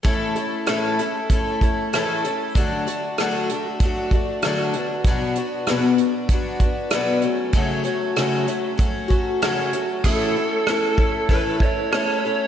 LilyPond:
<<
  \new Staff \with { instrumentName = "Lead electric guitar" } { \time 4/4 \key a \major \tempo 4 = 96 r1 | r1 | r1 | r1 |
a'2 b'8 cis''8 cis''4 | }
  \new Staff \with { instrumentName = "Twelve-string acoustic guitar" } { \time 4/4 \key a \major <a, e a cis' e' a'>8 <a cis' e' a'>8 <a, e a cis' e' a'>8 <a cis' e' a'>8 <a cis' e' a'>8 <a cis' e' a'>8 <a, e a cis' e' a'>8 <a cis' e' a'>8 | <d fis a d' fis'>8 <a d' fis'>8 <d fis a d' fis'>8 <a d' fis'>8 <fis a d' fis'>8 <a d' fis'>8 <d fis a d' fis'>8 <b d' fis'>8 | <b, fis b d' fis'>8 <b d' fis'>8 <b, fis b d' fis'>8 <b d' fis'>8 <fis b d' fis'>8 <b d' fis'>8 <b, fis b d' fis'>8 <fis a cis' fis'>8 | <fis, cis fis a cis' fis'>8 <fis a cis' fis'>8 <fis, cis fis a cis' fis'>8 <fis a cis' fis'>8 <fis a cis' fis'>8 <fis a cis' fis'>8 <fis, cis fis a cis' fis'>8 <fis a cis' fis'>8 |
<a, e a cis' e' a'>8 <a cis' e' a'>8 <a cis' e' a'>8 <a cis' e' a'>8 <a, e a cis' e' a'>8 <a cis' e' a'>8 <a cis' e' a'>8 <a cis' e' a'>8 | }
  \new DrumStaff \with { instrumentName = "Drums" } \drummode { \time 4/4 <hh bd>8 hh8 <hh ss>8 hh8 <hh bd>8 <hh bd>8 <hh ss>8 hh8 | <hh bd>8 hh8 <hh ss>8 hh8 <hh bd>8 <hh bd>8 <hh ss>8 hh8 | <hh bd>8 hh8 <hh ss>8 hh8 <hh bd>8 <hh bd>8 <hh ss>8 hh8 | <hh bd>8 hh8 <hh ss>8 hh8 <hh bd>8 <hh bd>8 <hh ss>8 hh8 |
<cymc bd>4 <hho ss>8 bd8 <hho bd>8 bd8 <hho ss>4 | }
>>